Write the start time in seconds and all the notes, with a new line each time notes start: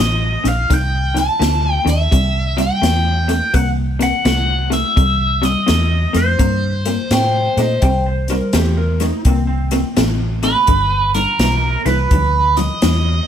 Already playing: D#5
0.00 A1 F2 D3
0.44 A#1 F2 D3, snare, closed hi-hat
0.48 F5
0.70 C2 F2 D#3, kick, snare, closed hi-hat
0.74 G5
1.14 F2 D#3, snare, closed hi-hat
1.19 A5
1.39 D2 F2 D3, snare, closed hi-hat
1.72 G5
1.85 D#2 F2 D3, snare, closed hi-hat
1.90 E5
2.11 C2 C3 G3, kick, closed hi-hat
2.57 C3 G3 G5, snare, closed hi-hat
2.82 E2 C3 A3, snare, closed hi-hat
3.28 C3 A3 G5, snare, closed hi-hat
3.54 C2 C3 A#3 F#5, kick, closed hi-hat
3.99 C3 A#3 F#5, snare, closed hi-hat
4.25 C2 C3 A3, snare, closed hi-hat
4.70 C3 A3 E5, snare, closed hi-hat
4.96 C2 C3 G3, kick, closed hi-hat
5.42 C3 G3 D#5, snare, closed hi-hat
5.66 E2 C3 A3, snare, closed hi-hat
6.13 F2 C3 A3 C5, snare, closed hi-hat
6.39 G2 C3 A#3, kick, closed hi-hat
6.85 C3 A#3, snare, closed hi-hat
7.11 A2 C3 A3 G5, snare, closed hi-hat
7.57 A#2 C3 A3 D#5, snare, closed hi-hat
7.82 C2 C3 G3 G5, kick, closed hi-hat
8.06 C5
8.28 C3 G3 A#4, snare, closed hi-hat
8.53 E2 C3 A3 G4, snare, closed hi-hat
8.77 A#4
9.00 C3 A3 D#4, snare, closed hi-hat
9.25 C2 C3 A#3 C4, kick, closed hi-hat
9.47 C4
9.71 C3 A#3, snare, closed hi-hat
9.97 A1 C3 A3, snare, closed hi-hat
10.43 C3 A3 B4, snare, closed hi-hat
10.67 G1 G2 D3, kick, closed hi-hat
11.14 G2 D3 A#4, snare, closed hi-hat
11.39 B1 G2 E3, snare, closed hi-hat
11.85 C2 G2 E3 B4, snare, closed hi-hat
12.11 D2 G2 F3, kick, closed hi-hat
12.57 G2 F3 D#5, snare, closed hi-hat
12.82 E2 G2 E3, snare, closed hi-hat